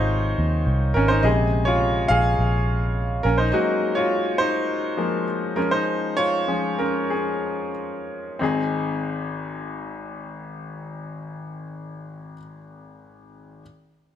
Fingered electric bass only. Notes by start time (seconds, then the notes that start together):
Already playing: G#1
0.38 D#2
0.67 C2
0.95 G#1
1.24 A#1
2.10 A#1
2.39 A#1
3.25 A#1